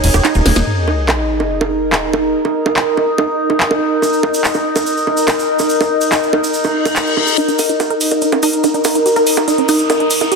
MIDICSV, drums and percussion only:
0, 0, Header, 1, 2, 480
1, 0, Start_track
1, 0, Tempo, 419580
1, 762, Time_signature, 4, 2, 24, 8
1, 11847, End_track
2, 0, Start_track
2, 0, Title_t, "Drums"
2, 42, Note_on_c, 9, 46, 101
2, 42, Note_on_c, 9, 51, 84
2, 156, Note_off_c, 9, 46, 0
2, 156, Note_off_c, 9, 51, 0
2, 160, Note_on_c, 9, 69, 84
2, 162, Note_on_c, 9, 42, 58
2, 162, Note_on_c, 9, 60, 80
2, 275, Note_off_c, 9, 69, 0
2, 276, Note_off_c, 9, 42, 0
2, 276, Note_off_c, 9, 60, 0
2, 281, Note_on_c, 9, 69, 65
2, 282, Note_on_c, 9, 39, 126
2, 282, Note_on_c, 9, 42, 56
2, 393, Note_off_c, 9, 69, 0
2, 393, Note_on_c, 9, 69, 38
2, 396, Note_off_c, 9, 39, 0
2, 396, Note_off_c, 9, 42, 0
2, 402, Note_on_c, 9, 42, 29
2, 507, Note_off_c, 9, 69, 0
2, 517, Note_off_c, 9, 42, 0
2, 522, Note_on_c, 9, 38, 59
2, 522, Note_on_c, 9, 46, 103
2, 522, Note_on_c, 9, 51, 80
2, 522, Note_on_c, 9, 60, 40
2, 637, Note_off_c, 9, 38, 0
2, 637, Note_off_c, 9, 46, 0
2, 637, Note_off_c, 9, 51, 0
2, 637, Note_off_c, 9, 60, 0
2, 642, Note_on_c, 9, 38, 80
2, 642, Note_on_c, 9, 42, 56
2, 648, Note_on_c, 9, 69, 78
2, 757, Note_off_c, 9, 38, 0
2, 757, Note_off_c, 9, 42, 0
2, 762, Note_off_c, 9, 69, 0
2, 1002, Note_on_c, 9, 60, 38
2, 1116, Note_off_c, 9, 60, 0
2, 1242, Note_on_c, 9, 39, 120
2, 1242, Note_on_c, 9, 60, 75
2, 1357, Note_off_c, 9, 39, 0
2, 1357, Note_off_c, 9, 60, 0
2, 1602, Note_on_c, 9, 60, 37
2, 1717, Note_off_c, 9, 60, 0
2, 1842, Note_on_c, 9, 60, 74
2, 1956, Note_off_c, 9, 60, 0
2, 2202, Note_on_c, 9, 39, 125
2, 2202, Note_on_c, 9, 60, 38
2, 2317, Note_off_c, 9, 39, 0
2, 2317, Note_off_c, 9, 60, 0
2, 2442, Note_on_c, 9, 60, 72
2, 2556, Note_off_c, 9, 60, 0
2, 2802, Note_on_c, 9, 60, 37
2, 2917, Note_off_c, 9, 60, 0
2, 3042, Note_on_c, 9, 60, 67
2, 3156, Note_off_c, 9, 60, 0
2, 3162, Note_on_c, 9, 39, 118
2, 3276, Note_off_c, 9, 39, 0
2, 3402, Note_on_c, 9, 60, 36
2, 3516, Note_off_c, 9, 60, 0
2, 3642, Note_on_c, 9, 60, 75
2, 3756, Note_off_c, 9, 60, 0
2, 4002, Note_on_c, 9, 60, 38
2, 4116, Note_off_c, 9, 60, 0
2, 4122, Note_on_c, 9, 39, 127
2, 4236, Note_off_c, 9, 39, 0
2, 4242, Note_on_c, 9, 60, 78
2, 4356, Note_off_c, 9, 60, 0
2, 4602, Note_on_c, 9, 60, 38
2, 4612, Note_on_c, 9, 69, 62
2, 4716, Note_off_c, 9, 60, 0
2, 4725, Note_off_c, 9, 69, 0
2, 4725, Note_on_c, 9, 69, 41
2, 4839, Note_off_c, 9, 69, 0
2, 4842, Note_on_c, 9, 60, 84
2, 4956, Note_off_c, 9, 60, 0
2, 4966, Note_on_c, 9, 69, 83
2, 5080, Note_off_c, 9, 69, 0
2, 5082, Note_on_c, 9, 39, 118
2, 5084, Note_on_c, 9, 69, 66
2, 5194, Note_off_c, 9, 69, 0
2, 5194, Note_on_c, 9, 69, 36
2, 5197, Note_off_c, 9, 39, 0
2, 5202, Note_on_c, 9, 60, 40
2, 5309, Note_off_c, 9, 69, 0
2, 5316, Note_off_c, 9, 60, 0
2, 5442, Note_on_c, 9, 60, 74
2, 5444, Note_on_c, 9, 69, 82
2, 5556, Note_off_c, 9, 60, 0
2, 5559, Note_off_c, 9, 69, 0
2, 5563, Note_on_c, 9, 69, 68
2, 5677, Note_off_c, 9, 69, 0
2, 5688, Note_on_c, 9, 69, 39
2, 5802, Note_off_c, 9, 69, 0
2, 5802, Note_on_c, 9, 60, 37
2, 5916, Note_off_c, 9, 60, 0
2, 5916, Note_on_c, 9, 69, 75
2, 6030, Note_off_c, 9, 69, 0
2, 6033, Note_on_c, 9, 69, 70
2, 6042, Note_on_c, 9, 39, 117
2, 6042, Note_on_c, 9, 60, 82
2, 6148, Note_off_c, 9, 69, 0
2, 6156, Note_off_c, 9, 39, 0
2, 6156, Note_off_c, 9, 60, 0
2, 6168, Note_on_c, 9, 69, 43
2, 6283, Note_off_c, 9, 69, 0
2, 6394, Note_on_c, 9, 69, 79
2, 6402, Note_on_c, 9, 60, 37
2, 6508, Note_off_c, 9, 69, 0
2, 6514, Note_on_c, 9, 69, 72
2, 6516, Note_off_c, 9, 60, 0
2, 6628, Note_off_c, 9, 69, 0
2, 6642, Note_on_c, 9, 60, 81
2, 6642, Note_on_c, 9, 69, 41
2, 6756, Note_off_c, 9, 60, 0
2, 6756, Note_off_c, 9, 69, 0
2, 6876, Note_on_c, 9, 69, 80
2, 6991, Note_off_c, 9, 69, 0
2, 6999, Note_on_c, 9, 69, 66
2, 7002, Note_on_c, 9, 39, 116
2, 7002, Note_on_c, 9, 60, 40
2, 7114, Note_off_c, 9, 69, 0
2, 7116, Note_off_c, 9, 39, 0
2, 7116, Note_off_c, 9, 60, 0
2, 7127, Note_on_c, 9, 69, 38
2, 7242, Note_off_c, 9, 69, 0
2, 7242, Note_on_c, 9, 60, 78
2, 7356, Note_off_c, 9, 60, 0
2, 7366, Note_on_c, 9, 69, 82
2, 7477, Note_off_c, 9, 69, 0
2, 7477, Note_on_c, 9, 69, 66
2, 7591, Note_off_c, 9, 69, 0
2, 7596, Note_on_c, 9, 69, 41
2, 7602, Note_on_c, 9, 60, 42
2, 7711, Note_off_c, 9, 69, 0
2, 7717, Note_off_c, 9, 60, 0
2, 7842, Note_on_c, 9, 60, 78
2, 7844, Note_on_c, 9, 69, 76
2, 7957, Note_off_c, 9, 60, 0
2, 7958, Note_off_c, 9, 69, 0
2, 7960, Note_on_c, 9, 69, 67
2, 7962, Note_on_c, 9, 39, 118
2, 8075, Note_off_c, 9, 69, 0
2, 8077, Note_off_c, 9, 39, 0
2, 8085, Note_on_c, 9, 69, 39
2, 8199, Note_off_c, 9, 69, 0
2, 8202, Note_on_c, 9, 60, 39
2, 8316, Note_off_c, 9, 60, 0
2, 8319, Note_on_c, 9, 69, 75
2, 8434, Note_off_c, 9, 69, 0
2, 8442, Note_on_c, 9, 42, 56
2, 8452, Note_on_c, 9, 69, 46
2, 8557, Note_off_c, 9, 42, 0
2, 8562, Note_on_c, 9, 42, 28
2, 8565, Note_off_c, 9, 69, 0
2, 8565, Note_on_c, 9, 69, 36
2, 8677, Note_off_c, 9, 42, 0
2, 8679, Note_off_c, 9, 69, 0
2, 8679, Note_on_c, 9, 69, 85
2, 8682, Note_on_c, 9, 46, 105
2, 8682, Note_on_c, 9, 60, 40
2, 8793, Note_off_c, 9, 69, 0
2, 8796, Note_off_c, 9, 46, 0
2, 8796, Note_off_c, 9, 60, 0
2, 8802, Note_on_c, 9, 42, 52
2, 8804, Note_on_c, 9, 69, 39
2, 8917, Note_off_c, 9, 42, 0
2, 8918, Note_off_c, 9, 69, 0
2, 8922, Note_on_c, 9, 42, 56
2, 8922, Note_on_c, 9, 60, 75
2, 8923, Note_on_c, 9, 69, 52
2, 9037, Note_off_c, 9, 42, 0
2, 9037, Note_off_c, 9, 60, 0
2, 9037, Note_off_c, 9, 69, 0
2, 9043, Note_on_c, 9, 42, 27
2, 9157, Note_off_c, 9, 42, 0
2, 9159, Note_on_c, 9, 69, 94
2, 9162, Note_on_c, 9, 46, 107
2, 9273, Note_off_c, 9, 69, 0
2, 9277, Note_off_c, 9, 46, 0
2, 9283, Note_on_c, 9, 42, 55
2, 9283, Note_on_c, 9, 60, 36
2, 9284, Note_on_c, 9, 69, 35
2, 9397, Note_off_c, 9, 42, 0
2, 9397, Note_off_c, 9, 60, 0
2, 9398, Note_off_c, 9, 69, 0
2, 9398, Note_on_c, 9, 69, 53
2, 9402, Note_on_c, 9, 42, 57
2, 9513, Note_off_c, 9, 69, 0
2, 9517, Note_off_c, 9, 42, 0
2, 9522, Note_on_c, 9, 42, 27
2, 9522, Note_on_c, 9, 60, 79
2, 9637, Note_off_c, 9, 42, 0
2, 9637, Note_off_c, 9, 60, 0
2, 9640, Note_on_c, 9, 69, 93
2, 9642, Note_on_c, 9, 46, 108
2, 9755, Note_off_c, 9, 69, 0
2, 9756, Note_off_c, 9, 46, 0
2, 9760, Note_on_c, 9, 69, 38
2, 9762, Note_on_c, 9, 42, 56
2, 9875, Note_off_c, 9, 69, 0
2, 9876, Note_off_c, 9, 42, 0
2, 9880, Note_on_c, 9, 69, 51
2, 9882, Note_on_c, 9, 42, 55
2, 9882, Note_on_c, 9, 60, 37
2, 9994, Note_off_c, 9, 69, 0
2, 9996, Note_off_c, 9, 42, 0
2, 9996, Note_off_c, 9, 60, 0
2, 10002, Note_on_c, 9, 42, 28
2, 10003, Note_on_c, 9, 69, 34
2, 10115, Note_off_c, 9, 69, 0
2, 10115, Note_on_c, 9, 69, 88
2, 10117, Note_off_c, 9, 42, 0
2, 10122, Note_on_c, 9, 46, 99
2, 10122, Note_on_c, 9, 60, 76
2, 10229, Note_off_c, 9, 69, 0
2, 10236, Note_off_c, 9, 46, 0
2, 10236, Note_off_c, 9, 60, 0
2, 10242, Note_on_c, 9, 42, 56
2, 10244, Note_on_c, 9, 69, 35
2, 10356, Note_off_c, 9, 42, 0
2, 10359, Note_off_c, 9, 69, 0
2, 10362, Note_on_c, 9, 42, 53
2, 10371, Note_on_c, 9, 69, 60
2, 10476, Note_off_c, 9, 42, 0
2, 10479, Note_off_c, 9, 69, 0
2, 10479, Note_on_c, 9, 69, 38
2, 10482, Note_on_c, 9, 42, 28
2, 10482, Note_on_c, 9, 60, 37
2, 10594, Note_off_c, 9, 69, 0
2, 10596, Note_off_c, 9, 42, 0
2, 10596, Note_off_c, 9, 60, 0
2, 10599, Note_on_c, 9, 69, 95
2, 10602, Note_on_c, 9, 46, 108
2, 10714, Note_off_c, 9, 69, 0
2, 10716, Note_off_c, 9, 46, 0
2, 10719, Note_on_c, 9, 69, 35
2, 10721, Note_on_c, 9, 42, 52
2, 10721, Note_on_c, 9, 60, 73
2, 10834, Note_off_c, 9, 69, 0
2, 10836, Note_off_c, 9, 42, 0
2, 10836, Note_off_c, 9, 60, 0
2, 10842, Note_on_c, 9, 42, 54
2, 10849, Note_on_c, 9, 69, 51
2, 10956, Note_off_c, 9, 42, 0
2, 10962, Note_on_c, 9, 42, 27
2, 10964, Note_off_c, 9, 69, 0
2, 11076, Note_off_c, 9, 42, 0
2, 11081, Note_on_c, 9, 69, 85
2, 11082, Note_on_c, 9, 46, 108
2, 11082, Note_on_c, 9, 60, 37
2, 11195, Note_off_c, 9, 69, 0
2, 11196, Note_off_c, 9, 46, 0
2, 11196, Note_off_c, 9, 60, 0
2, 11202, Note_on_c, 9, 42, 56
2, 11202, Note_on_c, 9, 69, 40
2, 11316, Note_off_c, 9, 42, 0
2, 11316, Note_off_c, 9, 69, 0
2, 11322, Note_on_c, 9, 42, 54
2, 11322, Note_on_c, 9, 60, 76
2, 11322, Note_on_c, 9, 69, 48
2, 11436, Note_off_c, 9, 42, 0
2, 11436, Note_off_c, 9, 60, 0
2, 11436, Note_off_c, 9, 69, 0
2, 11442, Note_on_c, 9, 42, 26
2, 11556, Note_off_c, 9, 42, 0
2, 11556, Note_on_c, 9, 69, 99
2, 11562, Note_on_c, 9, 46, 110
2, 11671, Note_off_c, 9, 69, 0
2, 11676, Note_off_c, 9, 46, 0
2, 11682, Note_on_c, 9, 42, 56
2, 11682, Note_on_c, 9, 60, 38
2, 11687, Note_on_c, 9, 69, 42
2, 11797, Note_off_c, 9, 42, 0
2, 11797, Note_off_c, 9, 60, 0
2, 11801, Note_off_c, 9, 69, 0
2, 11802, Note_on_c, 9, 42, 54
2, 11805, Note_on_c, 9, 69, 52
2, 11847, Note_off_c, 9, 42, 0
2, 11847, Note_off_c, 9, 69, 0
2, 11847, End_track
0, 0, End_of_file